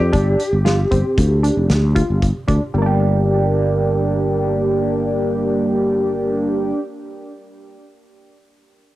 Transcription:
Already playing: lead electric guitar G4
0.00 fretless electric bass F2
0.13 fretless electric bass G1, synth arpeggio sound D4, kick, closed hi-hat
0.40 closed hi-hat
0.53 fretless electric bass G1
0.65 synth arpeggio sound F4, snare, closed hi-hat
0.91 fretless electric bass G1, synth arpeggio sound C4, kick, closed hi-hat
1.18 fretless electric bass D2, kick, closed hi-hat
1.43 synth arpeggio sound D4, closed hi-hat
1.57 fretless electric bass F1
1.70 fretless electric bass D2, snare, closed hi-hat
1.95 synth arpeggio sound F4, kick, closed hi-hat
2.10 fretless electric bass G1
2.22 kick, closed hi-hat
2.47 fretless electric bass D2, synth arpeggio sound D4, kick, closed hi-hat
2.74 fretless electric bass G1, synth arpeggio sound G3
2.78 synth arpeggio sound A#3
2.82 synth arpeggio sound D4
2.86 synth arpeggio sound G4

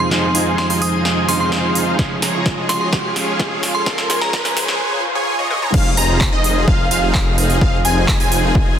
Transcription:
Already playing: string section F2 C3 D#4 G#4, riser
0.00 synth bell C6
0.10 clean electric guitar F3 G#3 C4 D#4, supersaw synth D#4 F4 G#4 C5 F5, snare
0.35 supersaw synth D#4 F4 G#4 C5 G#5, open hi-hat
0.58 synth bell C6, snare
0.70 supersaw synth D#4 F4 G#4 C5 G#5, synth bell C6, open hi-hat
0.82 synth bell D#6, open hi-hat
1.05 snare
1.27 clean electric guitar F3 G#3 C4 D#4, supersaw synth D#4 F4 G#4 C5 F5, synth bell C6, open hi-hat
1.40 synth bell C6
1.52 snare
1.75 open hi-hat
1.98 string section C#2 C#3 F4 G#4, clean electric guitar F3 G#3 C#4 F4, supersaw synth G#4, kick, snare
2.22 supersaw synth G#4 C#5 A#5, snare, open hi-hat
2.46 kick, snare
2.58 supersaw synth G#4 C#5 D#5
2.69 synth bell C6, snare, open hi-hat
2.81 synth bell C6
2.93 supersaw synth G#4 C#5 F5, kick, snare
3.15 clean electric guitar F3 G#3 C#4 F4, supersaw synth G#4 C#5 F5, snare, open hi-hat
3.39 kick, snare
3.63 snare, open hi-hat
3.75 synth bell C6
3.85 clean electric guitar F3 G#3 C#4 F4, supersaw synth G#4 C#5 F5, string section A#4, kick, snare
3.98 snare
4.10 supersaw synth G#4 C#5 G#5, snare, open hi-hat
4.22 synth bell A#5, snare
4.33 kick, snare
4.45 supersaw synth G#4 C#5 G#5, snare, open hi-hat
4.57 snare, open hi-hat
4.68 snare
4.80 swell
5.15 supersaw synth G#4 C#5 G#5
5.39 supersaw synth G#4 C#5 D#5
5.50 supersaw synth G#4 C#5 D#5, high tom
5.62 supersaw synth G#4 C#5 A#5, mid tom
5.74 detuned saw bass F1, string section F3 C4 D#4 G#4, supersaw synth D#4 F4 G#4 F5, digital synth lead F5, kick, crash
5.97 detuned saw bass F1, supersaw synth D#4 F4 G#4 C5 A#5, digital synth lead A#5, open hi-hat
6.21 kick, clap
6.33 detuned saw bass F1, supersaw synth D#4 F4 G#4 C5 D#5, digital synth lead D#5
6.44 open hi-hat
6.68 detuned saw bass F1, supersaw synth D#4 F4 G#4, digital synth lead F5, kick
6.91 detuned saw bass F1, supersaw synth D#4 F4 G#4 C5 F5, digital synth lead F5, open hi-hat
7.15 kick, clap
7.38 open hi-hat
7.50 open hi-hat
7.61 detuned saw bass F1, supersaw synth D#4 F4 G#4, digital synth lead F5, kick
7.85 detuned saw bass F1, supersaw synth D#4 F4 G#4 C5 G#5, digital synth lead G#5, open hi-hat
8.08 kick, clap
8.20 detuned saw bass F1, supersaw synth D#4 F4 G#4 C5 G#5, digital synth lead G#5, open hi-hat
8.32 open hi-hat
8.55 kick

